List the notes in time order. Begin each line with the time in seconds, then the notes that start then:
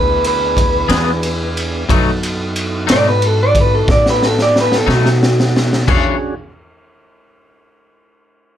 Already playing: D2 B3 D4 E4 G#4 B4
0.24 B4, ride
0.57 kick, ride
0.89 E2 E3 B3 D4 G#4, snare, ride
1.23 ride
1.57 ride
1.89 F#2 B2 F#3 A3 B3 D#4 F#4 A4, kick, ride
2.23 ride
2.56 ride
2.87 G#2 B2 F#3 A3 D#4, snare, ride
2.92 D5
3.08 B4
3.22 ride
3.27 A4
3.43 D5
3.55 kick, ride
3.61 B4
3.75 A4
3.88 A2 D5, kick, snare
4.06 snare
4.10 B4
4.23 A4, snare
4.38 D5, snare
4.56 snare
4.61 B4
4.72 snare
4.77 A4
4.87 B2 F#3 A3 D#4, snare
4.93 F#4
5.06 snare
5.23 snare
5.40 snare
5.57 snare
5.73 snare
5.88 E2 E3 C#4 D4 F#4 G#4 C#5, kick, crash